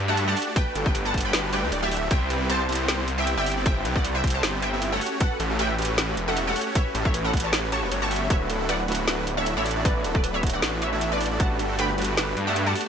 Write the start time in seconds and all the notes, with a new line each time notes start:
0.00 G2
0.08 A3 D4 F#4 G4 E5 F#5 A5
0.17 closed hi-hat
0.28 A3 D4 F#4 G4 D5 F#5 A5
0.37 open hi-hat
0.42 closed hi-hat
0.47 A3 D4 F#4 G4 D5
0.56 A3 D4 F#4 G4 B4 G5, kick, closed hi-hat
0.75 G1 A3 D4 F#4 G4 A4, closed hi-hat
0.86 B4 G5, kick
0.95 A3 D4 F#4 G4 B4, closed hi-hat
1.05 F#5 A5
1.14 G1 A3 D4 F#4 G4 B4, kick, closed hi-hat
1.18 closed hi-hat
1.21 closed hi-hat
1.25 G5 B5
1.33 A3 D4 F#4 G4 B4, snare, closed hi-hat
1.53 A3 D4 F#4 G4 B4 D5 G5, closed hi-hat
1.63 D2 A3 D4 F#4 G4 B4
1.72 D1 A3 D4 F#4 G4 D5, closed hi-hat
1.83 A3 D4 F#4 G4 D5 E5
1.91 A3 D4 F#4 G4 E5, open hi-hat
1.97 closed hi-hat
2.11 C2 B3 C4 E4 G4 C5 E5 G5, kick, closed hi-hat
2.30 B3 C4 E4 G4 B4, closed hi-hat
2.49 B3 C4 E4 G4 C5 A5, closed hi-hat
2.69 C2 B3 C4 E4 G4 C5, closed hi-hat
2.72 closed hi-hat
2.75 closed hi-hat
2.88 B3 C4 E4 G4 C5, snare, closed hi-hat
3.08 closed hi-hat
3.18 B3 C4 E4 G4 E5 G5
3.27 closed hi-hat
3.37 G1 B3 C4 E4 G4 D5 E5 G5
3.46 open hi-hat
3.52 closed hi-hat
3.57 B3 C4 E4 G4 D5
3.66 B3 C4 E4 G4 C5 E5 G5, kick, closed hi-hat
3.85 C2 B3 C4 E4 G4 B4, closed hi-hat
3.95 D5 F#5, kick
4.04 B3 C4 E4 G4 C5, closed hi-hat
4.15 E5 G5
4.24 C2 B3 C4 E4 G4 C5, kick, closed hi-hat
4.27 closed hi-hat
4.30 C5 A5, closed hi-hat
4.43 G1 B3 C4 E4 G4 C5, snare, closed hi-hat
4.62 E5 G5, closed hi-hat
4.73 B3 C4 E4 G4 E5
4.82 closed hi-hat
4.92 A3 C#4 F#4 G4 A4 C#5 F#5
5.01 open hi-hat
5.06 closed hi-hat
5.12 A3 C#4 F#4 G4 C#5
5.20 A3 C#4 F#4 G4 A4 B4 F#5, kick, closed hi-hat
5.40 A1 A3 C#4 F#4 G4 A4, closed hi-hat
5.59 A3 C#4 F#4 G4 B4 E5 G5, closed hi-hat
5.78 A1 A3 C#4 F#4 G4 B4, closed hi-hat
5.82 closed hi-hat
5.85 closed hi-hat
5.98 A3 C#4 F#4 G4 B4, snare, closed hi-hat
6.17 E1, closed hi-hat
6.28 A3 C#4 F#4 G4 A4 E5 F#5
6.37 closed hi-hat
6.47 A3 C#4 F#4 G4 A4 C#5 F#5
6.56 open hi-hat
6.61 closed hi-hat
6.66 A3 C#4 F#4 G4 C#5
6.75 A3 C#4 F#4 G4 B4 C#5 E5, kick, closed hi-hat
6.95 A1 A3 C#4 F#4 G4 A4, closed hi-hat
7.05 C#5 E5, kick
7.14 A3 C#4 F#4 G4 B4, closed hi-hat
7.25 A4 F#5
7.33 A1 A3 C#4 F#4 G4 B4, kick, closed hi-hat
7.37 closed hi-hat
7.40 C#5 A5, closed hi-hat
7.53 A3 C#4 F#4 G4 B4, snare, closed hi-hat
7.72 A3 C#4 F#4 G4 C#5 A5 C#6, closed hi-hat
7.82 E1 A3 C#4 F#4 G4 B4
7.91 G1 A3 C#4 F#4 G4 C#5, closed hi-hat
8.02 A3 C#4 F#4 G4 C#5 A5 C#6
8.11 A3 C#4 F#4 G4 E5, open hi-hat
8.16 closed hi-hat
8.28 D1 A3 B3 D4 E4 F#4 B4 C#5 E5, kick, closed hi-hat
8.32 F#4
8.50 A3 D4 E4 F#4 A4, closed hi-hat
8.69 A3 D4 E4 F#4 B4 D5 F#5, closed hi-hat
8.86 D1 A3 B3 D4 E4 F#4 B4, closed hi-hat
8.91 F#4, closed hi-hat
8.95 closed hi-hat
9.07 A3 D4 E4 F#4 B4, snare, closed hi-hat
9.27 closed hi-hat
9.36 A3 B3 D4 E4 F#4 C#5 E5
9.40 A4
9.46 closed hi-hat
9.57 A1 A3 D4 E4 F#4 C#5 D5 E5
9.66 open hi-hat
9.71 closed hi-hat
9.76 A3 D4 E4 F#4 D5
9.83 A3 B3 D4 E4 F#4 B4 D5, kick, closed hi-hat
10.04 D1 A3 D4 E4 F#4 A4, closed hi-hat
10.15 B4 D5, kick
10.24 A3 D4 E4 F#4 B4, closed hi-hat
10.34 C#5 E5
10.41 D1 A3 B3 D4 E4 F#4 B4, kick, closed hi-hat
10.45 F#4, closed hi-hat
10.50 D5 F#5, closed hi-hat
10.62 A1 A3 D4 E4 F#4 B4, snare, closed hi-hat
10.82 C#5 E5, closed hi-hat
10.90 A3 B3 D4 E4 F#4 E5
10.94 A4
11.01 closed hi-hat
11.12 A3 D4 E4 F#4 B4 D5
11.21 open hi-hat
11.26 closed hi-hat
11.31 A3 D4 E4 F#4 D5
11.38 A3 B3 D4 F#4 G4 B4 F#5 A5, kick, closed hi-hat
11.59 G1 A3 D4 F#4 G4 A4, closed hi-hat
11.79 A3 D4 F#4 G4 B4 G5 B5, closed hi-hat
11.96 G1 A3 B3 D4 F#4 G4 B4, closed hi-hat
12.02 closed hi-hat
12.04 closed hi-hat
12.17 A3 D4 F#4 G4 B4, snare, closed hi-hat
12.37 G2, closed hi-hat
12.45 A3 B3 D4 F#4 G4 E5 F#5 A5
12.49 G4
12.56 closed hi-hat
12.66 A3 D4 F#4 G4 D5 F#5 A5
12.75 open hi-hat
12.81 closed hi-hat